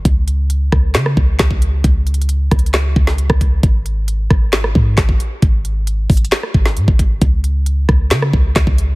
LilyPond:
<<
  \new Staff \with { instrumentName = "808-style bass" } { \clef bass \time 4/4 \key cis \minor \tempo 4 = 134 cis,4. cis,8 cis8 cis,8 cis,4 | cis,4. cis,4 cis,8. cis,8. | gis,,4. gis,,4 gis,8 gis,,8 r8 | gis,,4. gis,,8 r8 gis,,8 gis,16 gis,,8. |
cis,4. cis,8 cis8 cis,8 cis,16 cis,8. | }
  \new DrumStaff \with { instrumentName = "Drums" } \drummode { \time 4/4 <hh bd>8 hh8 hh8 <bd ss>8 <hc hh sn>16 ss16 bd8 <hc hh bd sn>16 bd16 hh8 | \tuplet 3/2 { <hh bd>16 r16 r16 hh16 hh16 hh16 hh16 r16 r16 <hh bd ss>16 hh16 hh16 } <hc hh sn>8 bd16 sn16 hh16 <bd ss>16 <hh bd>8 | <hh bd>8 hh8 hh8 <bd ss>8 <hc hh sn>16 ss16 bd8 <hc hh bd sn>16 bd16 hh8 | <hh bd>8 hh8 \tuplet 3/2 { hh16 r16 r16 <hh hho bd>16 hh16 hh16 } <hc hh sn>16 ss16 bd16 sn16 hh16 bd16 <hh bd>8 |
<hh bd>8 hh8 hh8 <bd ss>8 <hc hh sn>16 ss16 bd8 <hc hh bd sn>16 bd16 hh8 | }
>>